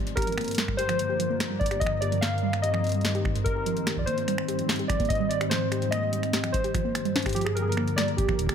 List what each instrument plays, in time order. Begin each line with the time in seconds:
Already playing: ambient pad G#2 D#3 G#3 C4
0.07 closed hi-hat
0.16 ambient pad G2 D3 F3 A#3, synth pluck G4, synth keys A#4, finger snap, kick, closed hi-hat
0.22 closed hi-hat
0.27 synth pluck F3, closed hi-hat
0.32 closed hi-hat
0.38 synth pluck A#3, finger snap, closed hi-hat
0.41 closed hi-hat
0.44 closed hi-hat
0.48 closed hi-hat
0.51 closed hi-hat
0.55 synth pluck G3, snare, closed hi-hat
0.58 closed hi-hat
0.68 finger snap, kick
0.77 synth pluck G4, synth keys C5, closed hi-hat
0.89 synth pluck F3, finger snap, closed hi-hat
0.99 closed hi-hat
1.09 synth pluck G4
1.20 synth pluck F3, closed hi-hat
1.30 synth pluck A#3
1.40 finger snap, snare, closed hi-hat
1.51 synth pluck G3
1.59 synth keys D5, kick, closed hi-hat
1.66 closed hi-hat
1.71 synth pluck G4, finger snap, closed hi-hat
1.80 ambient pad D#3 C4, synth pluck F3, synth keys D#5, kick, closed hi-hat
1.87 finger snap
2.01 synth pluck G4, synth keys D5, closed hi-hat
2.12 synth pluck F3, closed hi-hat
2.21 synth pluck A#3, synth keys F5, finger snap, snare, closed hi-hat
2.38 closed hi-hat
2.43 synth pluck G3
2.53 finger snap, closed hi-hat
2.62 synth pluck G4, synth keys D#5, closed hi-hat
2.74 synth pluck F3, finger snap
2.84 closed hi-hat
2.87 closed hi-hat
2.89 closed hi-hat
2.92 closed hi-hat
2.94 synth pluck G3, closed hi-hat
3.01 snare, closed hi-hat
3.05 synth pluck G3, closed hi-hat
3.08 closed hi-hat
3.15 synth pluck G4, closed hi-hat
3.25 finger snap, kick
3.35 synth pluck G2, closed hi-hat
3.44 ambient pad G#2 G3, synth keys A#4, kick, closed hi-hat
3.56 synth pluck G4
3.66 synth pluck F3, closed hi-hat
3.77 closed hi-hat
3.87 synth pluck G4, finger snap, snare, closed hi-hat
3.97 synth pluck F3, synth keys D5, kick
4.01 kick
4.04 synth pluck A#3, synth keys C5, kick, closed hi-hat
4.18 closed hi-hat
4.28 synth pluck G3, finger snap, closed hi-hat
4.38 finger snap
4.48 synth pluck G4, closed hi-hat
4.59 synth pluck F3, closed hi-hat
4.69 finger snap, snare, closed hi-hat
4.72 closed hi-hat
4.76 synth pluck G4, closed hi-hat
4.79 closed hi-hat
4.88 synth pluck F3, synth keys D5, finger snap, kick, closed hi-hat
5.00 synth pluck A#3, kick, closed hi-hat
5.05 synth keys D#5, closed hi-hat
5.10 kick, closed hi-hat
5.20 synth pluck G3
5.29 synth keys D5, closed hi-hat
5.41 synth pluck G4, finger snap, closed hi-hat
5.50 synth pluck F3, synth keys C5, snare, closed hi-hat
5.72 synth pluck G4, finger snap, closed hi-hat
5.82 synth pluck F3, closed hi-hat
5.91 synth pluck A#3, synth keys D#5, finger snap, closed hi-hat
6.13 synth pluck G3, closed hi-hat
6.23 finger snap, closed hi-hat
6.33 synth pluck G4, snare, closed hi-hat
6.44 synth pluck F3, finger snap, closed hi-hat
6.52 synth keys C5, kick, closed hi-hat
6.64 synth pluck G4, closed hi-hat
6.75 ambient pad G2 D3 F3 A#3, synth pluck F3, finger snap, kick, closed hi-hat
6.85 synth pluck A#3
6.95 finger snap, closed hi-hat
7.05 synth pluck G3, closed hi-hat
7.16 snare, closed hi-hat
7.19 closed hi-hat
7.22 finger snap, kick, closed hi-hat
7.26 synth pluck G4, closed hi-hat
7.29 closed hi-hat
7.33 synth keys G4, closed hi-hat
7.36 synth pluck F3, closed hi-hat
7.41 synth keys G#4, closed hi-hat
7.46 finger snap
7.55 synth pluck G4, synth keys A#4, closed hi-hat
7.62 synth keys G#4
7.67 synth pluck F3, synth keys A#4
7.72 closed hi-hat
7.77 synth pluck A#3, finger snap
7.88 closed hi-hat
7.96 synth pluck G3, synth keys D5, finger snap, snare, closed hi-hat
8.08 closed hi-hat
8.17 synth keys G4, synth pluck G4, kick, closed hi-hat
8.29 synth pluck F3, finger snap, kick
8.39 kick, closed hi-hat
8.41 kick
8.44 kick
8.47 synth pluck G4, finger snap, kick, closed hi-hat